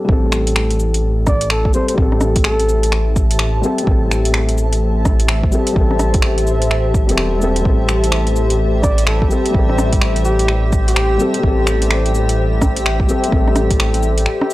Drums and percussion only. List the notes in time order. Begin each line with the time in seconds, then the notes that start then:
0.09 kick
0.32 finger snap, cabasa
0.47 closed hi-hat
0.56 finger snap
0.71 closed hi-hat
0.80 cabasa
0.94 closed hi-hat
1.27 kick, cross-stick, cabasa
1.41 closed hi-hat
1.50 finger snap
1.65 kick
1.74 cabasa
1.88 closed hi-hat
1.98 kick
2.12 cross-stick
2.21 cross-stick, cabasa
2.36 kick, closed hi-hat
2.44 finger snap
2.60 closed hi-hat
2.69 cabasa
2.83 closed hi-hat
2.92 finger snap
3.16 kick, cabasa
3.31 closed hi-hat
3.39 finger snap
3.63 cabasa
3.78 closed hi-hat
3.87 kick
4.11 finger snap, cabasa
4.25 closed hi-hat
4.34 finger snap
4.49 closed hi-hat
4.58 cabasa
4.73 closed hi-hat
5.05 kick, cross-stick, cabasa
5.20 closed hi-hat
5.28 finger snap
5.43 kick
5.52 cabasa
5.67 closed hi-hat
5.76 kick
5.91 cross-stick
5.99 cross-stick, closed hi-hat, cabasa
6.14 kick, closed hi-hat
6.22 finger snap
6.38 closed hi-hat
6.47 cabasa
6.62 closed hi-hat
6.71 finger snap
6.94 kick, cabasa
7.09 closed hi-hat
7.18 finger snap
7.42 cabasa
7.56 closed hi-hat
7.65 kick
7.89 finger snap, cabasa
8.04 closed hi-hat
8.12 finger snap
8.27 closed hi-hat
8.36 cabasa
8.50 closed hi-hat
8.84 kick, cross-stick, cabasa
8.98 closed hi-hat
9.07 finger snap
9.22 kick
9.31 cabasa
9.46 closed hi-hat
9.54 kick
9.69 cross-stick
9.78 cross-stick, cabasa
9.93 kick, closed hi-hat
10.02 finger snap
10.16 closed hi-hat
10.25 cabasa
10.39 closed hi-hat
10.48 finger snap
10.72 kick, cabasa
10.88 closed hi-hat
10.96 finger snap
11.20 cabasa
11.34 closed hi-hat
11.43 kick
11.67 finger snap, cabasa
11.82 closed hi-hat
11.91 finger snap
12.06 closed hi-hat
12.15 cabasa
12.29 closed hi-hat
12.61 kick, cross-stick, cabasa
12.76 closed hi-hat
12.86 finger snap
13.00 kick
13.09 cabasa
13.24 closed hi-hat
13.32 kick
13.48 cross-stick
13.56 cross-stick, closed hi-hat, cabasa
13.70 kick, closed hi-hat
13.80 finger snap
13.94 closed hi-hat
14.03 cabasa
14.18 closed hi-hat
14.26 finger snap
14.41 cross-stick
14.50 cabasa